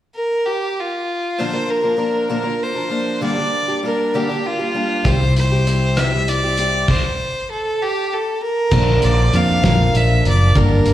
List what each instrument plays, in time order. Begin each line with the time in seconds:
0.16 fiddle A#4
0.46 fiddle G4
0.80 fiddle F4
1.38 steel-string acoustic guitar A#2 D3 F3 A#3 D4 A#4, fiddle C5
1.53 steel-string acoustic guitar F3 A#3 D4 A#4
1.71 fiddle A#4
1.82 steel-string acoustic guitar F3 A#3 D4 A#4
1.97 steel-string acoustic guitar F3 A#3 D4 A#4
2.29 steel-string acoustic guitar A#2 D3 F3 A#3 D4 A#4, fiddle A#4
2.44 steel-string acoustic guitar F3 A#3 D4 A#4
2.63 fiddle C5
2.75 steel-string acoustic guitar F3 A#3 D4 A#4
2.89 steel-string acoustic guitar F3 A#3 D4 A#4
3.21 steel-string acoustic guitar G2 D3 G3 A#3 D4 G4, fiddle D5
3.38 steel-string acoustic guitar G3 A#3 D4 G4
3.68 steel-string acoustic guitar G3 A#3 D4 G4
3.83 steel-string acoustic guitar G3 A#3 D4 G4, fiddle A#4
4.14 steel-string acoustic guitar G2 D3 G3 A#3 D4 G4, fiddle G4
4.29 steel-string acoustic guitar G3 A#3 D4 G4
4.46 fiddle F4
4.59 steel-string acoustic guitar G3 A#3 D4 G4
4.74 steel-string acoustic guitar G3 A#3 D4 G4
5.04 fingered electric bass C2, steel-string acoustic guitar C3 G3 C4 E4 G4, kick, closed hi-hat
5.09 fiddle C5
5.19 steel-string acoustic guitar C4 E4 G4
5.36 fiddle C5, closed hi-hat
5.52 steel-string acoustic guitar C4 E4 G4
5.67 steel-string acoustic guitar G3 C4 E4 G4, closed hi-hat
5.96 steel-string acoustic guitar C3 G3 C4 E4 G4, fiddle E5, cross-stick, closed hi-hat
6.10 steel-string acoustic guitar C4 E4 G4
6.28 fiddle D5, closed hi-hat
6.44 steel-string acoustic guitar C4 E4 G4
6.57 steel-string acoustic guitar G3 C4 E4 G4, closed hi-hat
6.88 fiddle C5, kick, crash
7.51 fiddle A4
7.83 fiddle G4
8.13 fiddle A4
8.43 fiddle A#4
8.71 fingered electric bass A#1, steel-string acoustic guitar A#2 D3 F3 A#3 D4 A#4, harmonium F3 A#3 D4, kick, crash
9.02 fingered electric bass A#1, fiddle D5, closed hi-hat
9.33 fingered electric bass F2, steel-string acoustic guitar F3 A#3 D4 A#4, fiddle F5, closed hi-hat
9.63 fingered electric bass A#1, steel-string acoustic guitar A#2 D3 F3 A#3 D4 A#4, kick, snare, closed hi-hat
9.95 fingered electric bass A#1, fiddle E5, closed hi-hat
10.25 fingered electric bass F#1, steel-string acoustic guitar F3 A#3 D4 A#4, fiddle D5, closed hi-hat
10.55 fingered electric bass G1, steel-string acoustic guitar G2 D3 G3 A#3 D4 G4, harmonium G3, fiddle A#4, kick, closed hi-hat
10.86 fingered electric bass G1, closed hi-hat